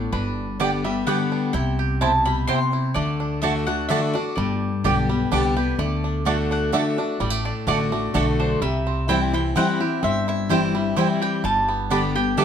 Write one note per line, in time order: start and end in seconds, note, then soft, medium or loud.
0.00 0.11 A2 medium
0.00 0.13 A3 medium
0.00 0.12 D4 medium
0.12 1.03 G1 medium
0.12 1.03 G2 medium
0.12 0.59 D4 medium
0.12 0.59 B4 medium
0.60 0.84 D3 medium
0.60 0.84 G3 medium
0.60 0.69 B3 medium
0.60 0.84 B3 medium
0.60 1.27 D4 medium
0.60 0.70 G4 medium
0.60 0.84 G4 medium
0.60 0.83 D5 medium
0.60 0.70 D5 loud
0.60 0.70 G5 loud
0.84 1.50 G3 medium
0.84 1.07 B3 medium
0.84 1.06 G4 medium
0.84 1.06 E5 medium
1.06 1.52 D3 medium
1.06 1.52 G3 medium
1.06 1.17 B3 medium
1.06 1.54 B3 medium
1.06 1.52 B3 loud
1.06 1.17 G4 medium
1.06 1.53 G4 loud
1.06 1.17 D5 medium
1.06 1.53 F#5 loud
1.06 1.17 G5 medium
1.32 1.54 D4 medium
1.53 2.45 C2 medium
1.53 2.44 C3 medium
1.53 2.00 E4 medium
1.53 2.01 G5 loud
1.79 2.44 G4 medium
2.01 2.46 B2 medium
2.01 2.11 C4 medium
2.01 2.68 E4 medium
2.01 2.11 E4 medium
2.01 2.11 C5 medium
2.01 2.11 G5 medium
2.01 2.25 A5 medium
2.25 2.91 G3 medium
2.25 2.47 B5 loud
2.47 2.93 C3 medium
2.47 2.58 C4 medium
2.47 2.96 C4 medium
2.47 2.58 E4 medium
2.47 2.58 C5 medium
2.47 2.58 G5 medium
2.47 2.92 C6 loud
2.73 2.96 E4 medium
2.94 3.86 D2 medium
2.94 3.41 D3 medium
2.94 3.63 A3 medium
2.94 3.44 D5 medium
3.20 3.42 D4 medium
3.42 3.66 D3 medium
3.42 3.52 A3 medium
3.42 3.67 A3 medium
3.42 3.90 D4 medium
3.42 3.67 D4 medium
3.42 3.52 F#4 medium
3.42 3.66 F#4 medium
3.42 3.53 D5 medium
3.42 3.65 E5 medium
3.42 3.53 A5 medium
3.67 4.33 A3 medium
3.67 3.90 D4 medium
3.67 3.89 F#4 medium
3.67 3.88 F#5 medium
3.89 4.14 D3 loud
3.89 3.99 A3 medium
3.89 4.14 A3 loud
3.89 4.15 D4 medium
3.89 4.14 D4 loud
3.89 4.00 F#4 medium
3.89 4.13 F#4 loud
3.89 4.00 D5 loud
3.89 4.15 E5 loud
3.89 4.00 A5 loud
4.14 5.31 D4 medium
4.14 4.37 D4 medium
4.14 4.36 F#4 medium
4.14 4.34 D5 medium
4.36 4.67 G1 medium
4.36 5.27 G2 medium
4.36 5.04 G3 medium
4.36 5.27 D5 medium
4.84 5.24 B1 medium
4.84 5.08 D3 medium
4.84 5.09 G3 medium
4.84 4.94 B3 medium
4.84 5.09 B3 medium
4.84 4.94 G4 medium
4.84 5.52 G4 medium
4.84 5.08 G4 medium
4.84 4.94 D5 medium
4.84 4.94 G5 medium
5.09 5.74 G3 medium
5.09 5.32 B3 medium
5.09 5.31 G4 medium
5.31 5.72 C2 medium
5.31 5.55 D3 medium
5.31 5.56 G3 loud
5.31 5.41 B3 medium
5.31 5.56 B3 loud
5.31 5.79 D4 medium
5.31 5.41 G4 medium
5.31 5.55 G4 loud
5.31 5.41 D5 medium
5.31 5.42 G5 medium
5.56 5.79 B3 medium
5.56 5.78 G4 medium
5.56 5.79 G4 medium
5.56 5.79 B4 medium
5.79 6.69 D2 medium
5.79 6.24 D3 medium
5.79 7.19 A3 medium
5.79 6.23 D5 medium
6.04 6.25 D4 medium
6.25 6.70 D3 medium
6.25 6.35 A3 medium
6.25 6.71 A3 medium
6.25 6.50 D4 medium
6.25 6.71 D4 medium
6.25 6.36 F#4 medium
6.25 6.71 F#4 medium
6.25 6.36 D5 medium
6.25 6.51 F#5 medium
6.25 6.36 A5 medium
6.51 6.72 D4 medium
6.51 6.72 F#5 medium
6.72 6.97 D3 loud
6.72 6.82 A3 medium
6.72 6.97 A3 medium
6.72 6.97 D4 medium
6.72 6.97 D4 loud
6.72 6.83 F#4 medium
6.72 6.96 F#4 medium
6.72 6.83 D5 medium
6.72 7.17 E5 medium
6.72 6.83 A5 medium
6.97 7.44 D4 medium
6.97 7.20 D4 medium
6.97 7.19 F#4 medium
7.20 7.50 A1 medium
7.20 8.10 A2 medium
7.20 7.30 G3 medium
7.20 7.44 D5 medium
7.30 7.67 A3 medium
7.45 7.66 D4 medium
7.45 7.51 D5 medium
7.67 8.07 A1 medium
7.67 7.91 D3 medium
7.67 7.77 A3 medium
7.67 7.91 A3 medium
7.67 8.14 D4 medium
7.67 7.91 D4 loud
7.67 7.77 F#4 medium
7.67 7.91 F#4 medium
7.67 7.77 D5 medium
7.67 8.36 D5 medium
7.67 7.77 A5 medium
7.92 8.57 A3 medium
7.92 8.14 D4 medium
7.92 8.13 F#4 medium
8.14 8.54 B1 medium
8.14 8.59 D3 loud
8.14 8.24 A3 medium
8.14 8.60 A3 loud
8.14 8.39 D4 medium
8.14 8.60 D4 loud
8.14 8.24 F#4 medium
8.14 8.60 F#4 medium
8.14 8.24 D5 medium
8.14 8.24 A5 loud
8.40 8.62 D4 medium
8.40 8.61 C5 medium
8.62 9.52 C2 medium
8.62 9.52 C3 medium
8.62 10.02 G3 medium
8.62 9.10 E5 medium
8.87 9.51 C4 medium
9.08 9.32 E3 medium
9.08 9.33 G3 medium
9.08 9.18 C4 medium
9.08 9.33 C4 medium
9.08 9.18 E4 medium
9.08 9.76 E4 medium
9.08 9.32 E4 loud
9.08 9.19 C5 medium
9.08 9.33 G5 medium
9.08 9.19 G5 medium
9.33 9.99 E3 medium
9.33 9.56 C4 soft
9.33 9.55 E4 medium
9.33 9.56 G5 medium
9.56 9.79 E3 loud
9.56 9.80 G3 loud
9.56 10.02 C4 medium
9.56 9.65 C4 medium
9.56 9.80 C4 loud
9.56 9.66 E4 medium
9.56 9.79 E4 loud
9.56 9.66 C5 loud
9.56 10.00 F#5 loud
9.56 9.66 G5 loud
9.80 10.03 C4 medium
9.80 10.02 E4 medium
9.80 10.50 G4 medium
10.03 10.93 G1 medium
10.03 10.92 G2 medium
10.03 10.70 C4 medium
10.03 10.28 E5 loud
10.28 10.93 E4 medium
10.28 10.50 E5 medium
10.49 10.73 E3 medium
10.49 10.74 G3 medium
10.49 10.59 C4 medium
10.49 10.74 C4 medium
10.49 10.60 E4 medium
10.49 10.73 E4 loud
10.49 11.21 G4 medium
10.49 10.60 C5 medium
10.49 11.18 E5 loud
10.49 10.60 G5 medium
10.75 11.43 G3 medium
10.75 10.97 C4 soft
10.75 10.96 E4 medium
10.96 11.42 E3 medium
10.96 11.42 G3 medium
10.96 11.06 C4 medium
10.96 11.42 C4 loud
10.96 11.44 E4 medium
10.96 11.06 E4 medium
10.96 11.43 E4 loud
10.96 11.07 C5 medium
10.96 11.07 G5 medium
11.22 12.15 G4 medium
11.22 11.43 G5 loud
11.44 12.34 G1 medium
11.44 12.34 G2 medium
11.44 12.45 G3 medium
11.44 11.88 A5 loud
11.69 12.45 B3 medium
11.90 12.15 D3 medium
11.90 12.15 G3 medium
11.90 12.00 B3 medium
11.90 12.15 B3 medium
11.90 12.37 D4 medium
11.90 12.00 G4 medium
11.90 12.14 G4 medium
11.90 12.01 D5 medium
11.90 12.01 A5 medium
11.90 12.15 B5 loud
12.15 12.37 B3 medium
12.15 12.37 G4 medium
12.15 12.45 G4 medium
12.15 12.36 G5 loud
12.37 12.45 D3 medium
12.37 12.45 G3 medium
12.37 12.45 B3 medium
12.37 12.45 D4 medium
12.37 12.45 G4 medium
12.37 12.45 G4 loud
12.37 12.45 D5 medium
12.37 12.45 E5 medium
12.37 12.45 A5 medium